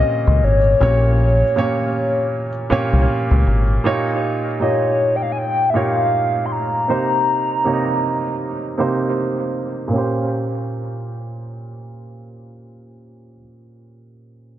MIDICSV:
0, 0, Header, 1, 5, 480
1, 0, Start_track
1, 0, Tempo, 759494
1, 509, Time_signature, 4, 2, 24, 8
1, 9220, End_track
2, 0, Start_track
2, 0, Title_t, "Soft synth lead"
2, 0, Program_c, 0, 80
2, 0, Note_on_c, 0, 75, 115
2, 279, Note_on_c, 0, 73, 101
2, 288, Note_off_c, 0, 75, 0
2, 2194, Note_off_c, 0, 73, 0
2, 2920, Note_on_c, 0, 73, 88
2, 3261, Note_on_c, 0, 79, 66
2, 3270, Note_off_c, 0, 73, 0
2, 3300, Note_on_c, 0, 77, 90
2, 3310, Note_off_c, 0, 79, 0
2, 3361, Note_on_c, 0, 80, 74
2, 3371, Note_off_c, 0, 77, 0
2, 3401, Note_on_c, 0, 79, 102
2, 3411, Note_off_c, 0, 80, 0
2, 3602, Note_on_c, 0, 76, 76
2, 3611, Note_off_c, 0, 79, 0
2, 3640, Note_on_c, 0, 77, 104
2, 3649, Note_off_c, 0, 76, 0
2, 4080, Note_on_c, 0, 84, 73
2, 4090, Note_off_c, 0, 77, 0
2, 4120, Note_on_c, 0, 82, 119
2, 4130, Note_off_c, 0, 84, 0
2, 5794, Note_off_c, 0, 82, 0
2, 9220, End_track
3, 0, Start_track
3, 0, Title_t, "Grand piano"
3, 0, Program_c, 1, 0
3, 0, Control_c, 1, 64, 127
3, 0, Note_on_c, 1, 46, 75
3, 0, Note_on_c, 1, 58, 67
3, 0, Note_on_c, 1, 60, 54
3, 0, Note_on_c, 1, 61, 71
3, 0, Note_on_c, 1, 67, 68
3, 0, Note_on_c, 1, 70, 72
3, 0, Note_on_c, 1, 75, 85
3, 367, Note_off_c, 1, 46, 0
3, 369, Note_off_c, 1, 58, 0
3, 373, Note_off_c, 1, 67, 0
3, 375, Note_off_c, 1, 75, 0
3, 391, Note_off_c, 1, 61, 0
3, 507, Note_on_c, 1, 46, 74
3, 511, Note_on_c, 1, 58, 68
3, 514, Note_on_c, 1, 61, 62
3, 519, Note_on_c, 1, 67, 65
3, 523, Note_on_c, 1, 73, 80
3, 901, Note_off_c, 1, 46, 0
3, 903, Note_off_c, 1, 58, 0
3, 905, Note_off_c, 1, 61, 0
3, 907, Note_off_c, 1, 67, 0
3, 909, Note_off_c, 1, 73, 0
3, 985, Note_on_c, 1, 46, 74
3, 990, Note_on_c, 1, 58, 68
3, 993, Note_on_c, 1, 61, 67
3, 997, Note_on_c, 1, 67, 68
3, 1002, Note_on_c, 1, 73, 84
3, 1566, Note_off_c, 1, 46, 0
3, 1568, Note_off_c, 1, 58, 0
3, 1570, Note_off_c, 1, 61, 0
3, 1572, Note_off_c, 1, 67, 0
3, 1574, Note_off_c, 1, 73, 0
3, 1705, Note_on_c, 1, 46, 87
3, 1709, Note_on_c, 1, 58, 85
3, 1713, Note_on_c, 1, 61, 83
3, 1717, Note_on_c, 1, 67, 82
3, 1721, Note_on_c, 1, 73, 97
3, 2286, Note_off_c, 1, 46, 0
3, 2288, Note_off_c, 1, 58, 0
3, 2290, Note_off_c, 1, 61, 0
3, 2292, Note_off_c, 1, 67, 0
3, 2294, Note_off_c, 1, 73, 0
3, 2427, Note_on_c, 1, 46, 82
3, 2430, Note_on_c, 1, 58, 77
3, 2433, Note_on_c, 1, 63, 78
3, 2436, Note_on_c, 1, 65, 78
3, 2438, Control_c, 1, 64, 0
3, 2439, Note_on_c, 1, 67, 74
3, 2442, Note_on_c, 1, 73, 92
3, 2443, Note_off_c, 1, 60, 0
3, 2443, Note_off_c, 1, 70, 0
3, 2551, Control_c, 1, 64, 127
3, 2821, Note_off_c, 1, 46, 0
3, 2823, Note_off_c, 1, 58, 0
3, 2825, Note_off_c, 1, 63, 0
3, 2826, Note_off_c, 1, 65, 0
3, 2827, Note_off_c, 1, 67, 0
3, 2829, Note_off_c, 1, 73, 0
3, 2905, Note_on_c, 1, 46, 60
3, 2908, Note_on_c, 1, 58, 57
3, 2911, Note_on_c, 1, 63, 56
3, 2915, Note_on_c, 1, 65, 56
3, 2918, Note_on_c, 1, 67, 58
3, 2921, Note_on_c, 1, 75, 68
3, 3486, Note_off_c, 1, 46, 0
3, 3488, Note_off_c, 1, 58, 0
3, 3489, Note_off_c, 1, 63, 0
3, 3491, Note_off_c, 1, 65, 0
3, 3493, Note_off_c, 1, 67, 0
3, 3494, Note_off_c, 1, 75, 0
3, 3626, Note_on_c, 1, 46, 73
3, 3629, Note_on_c, 1, 58, 66
3, 3633, Note_on_c, 1, 63, 67
3, 3636, Note_on_c, 1, 65, 68
3, 3639, Note_on_c, 1, 67, 68
3, 3642, Note_on_c, 1, 73, 81
3, 4207, Note_off_c, 1, 46, 0
3, 4208, Note_off_c, 1, 58, 0
3, 4210, Note_off_c, 1, 63, 0
3, 4212, Note_off_c, 1, 65, 0
3, 4213, Note_off_c, 1, 67, 0
3, 4215, Note_off_c, 1, 73, 0
3, 4347, Note_on_c, 1, 48, 64
3, 4351, Note_on_c, 1, 58, 63
3, 4355, Note_on_c, 1, 63, 61
3, 4357, Control_c, 1, 64, 0
3, 4359, Note_on_c, 1, 67, 66
3, 4363, Note_on_c, 1, 72, 80
3, 4475, Control_c, 1, 64, 127
3, 4741, Note_off_c, 1, 48, 0
3, 4743, Note_off_c, 1, 58, 0
3, 4745, Note_off_c, 1, 63, 0
3, 4748, Note_off_c, 1, 67, 0
3, 4749, Note_off_c, 1, 72, 0
3, 4829, Note_on_c, 1, 48, 71
3, 4832, Note_on_c, 1, 58, 70
3, 4837, Note_on_c, 1, 63, 65
3, 4841, Note_on_c, 1, 67, 64
3, 4844, Note_on_c, 1, 73, 61
3, 4884, Note_off_c, 1, 73, 0
3, 4886, Note_on_c, 1, 75, 81
3, 5408, Note_off_c, 1, 48, 0
3, 5410, Note_off_c, 1, 58, 0
3, 5412, Note_off_c, 1, 63, 0
3, 5414, Note_off_c, 1, 67, 0
3, 5437, Note_off_c, 1, 75, 0
3, 5547, Note_on_c, 1, 48, 83
3, 5551, Note_on_c, 1, 58, 79
3, 5555, Note_on_c, 1, 63, 73
3, 5559, Note_on_c, 1, 67, 75
3, 5563, Note_on_c, 1, 72, 92
3, 6127, Note_off_c, 1, 48, 0
3, 6129, Note_off_c, 1, 58, 0
3, 6131, Note_off_c, 1, 63, 0
3, 6133, Note_off_c, 1, 67, 0
3, 6135, Note_off_c, 1, 72, 0
3, 6242, Note_on_c, 1, 46, 74
3, 6259, Note_on_c, 1, 58, 67
3, 6275, Note_on_c, 1, 61, 70
3, 6278, Control_c, 1, 64, 0
3, 6291, Note_on_c, 1, 67, 70
3, 6307, Note_on_c, 1, 72, 80
3, 6374, Control_c, 1, 64, 127
3, 8409, Note_off_c, 1, 46, 0
3, 8425, Note_off_c, 1, 58, 0
3, 8442, Note_off_c, 1, 61, 0
3, 8458, Note_off_c, 1, 67, 0
3, 8474, Note_off_c, 1, 72, 0
3, 9220, End_track
4, 0, Start_track
4, 0, Title_t, "Picked electric bass"
4, 0, Program_c, 2, 34
4, 171, Note_on_c, 2, 37, 85
4, 251, Note_off_c, 2, 37, 0
4, 272, Note_on_c, 2, 32, 83
4, 465, Note_off_c, 2, 32, 0
4, 511, Note_on_c, 2, 34, 108
4, 898, Note_off_c, 2, 34, 0
4, 1851, Note_on_c, 2, 36, 79
4, 1931, Note_off_c, 2, 36, 0
4, 2091, Note_on_c, 2, 37, 82
4, 2171, Note_off_c, 2, 37, 0
4, 2191, Note_on_c, 2, 32, 85
4, 2384, Note_off_c, 2, 32, 0
4, 9220, End_track
5, 0, Start_track
5, 0, Title_t, "Muted picked electric bass strokes"
5, 1711, Note_on_c, 9, 29, 44
5, 1775, Note_off_c, 9, 29, 0
5, 9220, End_track
0, 0, End_of_file